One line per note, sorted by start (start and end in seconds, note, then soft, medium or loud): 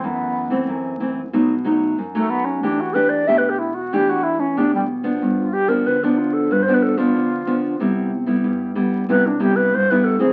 0.00 0.65 F#2 medium
0.00 0.46 E3 medium
0.00 0.46 A3 medium
0.05 0.69 B3 medium
0.50 0.95 E3 medium
0.50 0.95 A3 medium
0.50 0.95 C4 medium
0.68 1.30 F#2 medium
1.00 1.20 E3 medium
1.00 1.20 A3 medium
1.00 1.20 C4 medium
1.33 1.95 B2 medium
1.33 1.53 F#3 medium
1.33 1.53 A3 soft
1.33 1.53 D#4 medium
1.65 1.96 F#3 medium
1.65 1.96 A3 medium
1.65 1.96 D#4 medium
1.98 2.60 F#2 medium
2.15 2.58 F#3 medium
2.15 2.58 A3 medium
2.15 2.31 A3 medium
2.15 2.59 D#4 medium
2.30 2.46 B3 medium
2.45 2.65 C#4 medium
2.63 3.25 E3 medium
2.63 2.90 A3 medium
2.63 2.82 D4 medium
2.63 2.91 D4 medium
2.63 2.91 G4 medium
2.80 2.95 F#4 medium
2.94 3.22 A3 medium
2.94 3.22 D4 medium
2.94 3.22 G4 medium
2.94 3.11 B4 loud
3.09 3.29 D5 medium
3.27 3.89 B2 medium
3.27 3.70 A3 medium
3.27 3.70 D4 medium
3.27 3.70 G4 medium
3.27 3.39 E5 loud
3.38 3.51 B4 medium
3.49 3.60 G4 medium
3.59 3.76 E4 medium
3.74 3.95 F#4 medium
3.93 4.54 E3 medium
3.93 4.34 A3 medium
3.93 4.34 D4 soft
3.93 4.11 G4 loud
3.93 4.35 G4 medium
4.09 4.25 F#4 medium
4.23 4.41 E4 medium
4.40 4.59 C#4 medium
4.57 5.19 B2 medium
4.57 4.87 A3 medium
4.57 4.88 D4 soft
4.57 4.73 D4 medium
4.57 4.88 G4 medium
4.75 4.84 G3 medium
5.03 5.48 F3 medium
5.03 5.48 B3 medium
5.03 5.48 D4 medium
5.22 5.83 G2 medium
5.40 5.55 F4 medium
5.53 5.70 G4 loud
5.68 5.96 F3 medium
5.68 5.96 B3 medium
5.68 5.96 D4 medium
5.68 5.88 A#4 medium
5.86 6.48 D3 medium
5.86 6.05 B4 medium
6.03 6.63 F3 medium
6.03 6.63 B3 medium
6.03 6.20 D4 medium
6.03 6.63 D4 medium
6.18 6.35 F4 medium
6.33 6.54 A4 medium
6.51 7.12 G2 medium
6.51 6.64 B4 medium
6.62 6.75 C5 loud
6.68 6.95 F3 medium
6.68 6.95 B3 medium
6.68 6.95 D4 medium
6.74 6.84 B4 medium
6.83 6.99 A4 medium
6.97 7.42 F3 medium
6.97 7.42 B3 medium
6.97 7.42 D4 medium
6.97 7.79 F4 medium
7.15 7.77 D3 medium
7.47 7.74 F3 medium
7.47 7.75 B3 medium
7.47 7.75 D4 medium
7.80 8.41 C3 medium
7.80 8.10 G3 medium
7.80 8.11 B3 medium
7.80 8.11 E4 medium
8.26 8.71 G3 medium
8.26 8.71 B3 medium
8.26 8.71 E4 medium
8.44 9.06 G2 medium
8.75 9.03 G3 medium
8.75 9.03 B3 medium
8.75 9.04 E4 medium
9.09 9.70 C3 medium
9.09 9.28 G3 medium
9.09 9.28 B3 medium
9.09 9.28 E4 medium
9.09 9.28 B4 medium
9.27 9.43 D4 medium
9.40 9.71 G3 medium
9.40 9.71 B3 medium
9.40 9.71 E4 medium
9.40 9.57 G4 medium
9.56 9.76 B4 medium
9.74 10.33 G2 medium
9.74 9.92 C5 loud
9.90 10.17 G3 medium
9.90 10.17 B3 medium
9.90 10.18 E4 medium
9.90 10.06 B4 medium
10.04 10.22 A4 loud
10.19 10.33 E3 medium
10.19 10.33 A3 medium
10.19 10.33 C4 medium
10.19 10.33 G#4 medium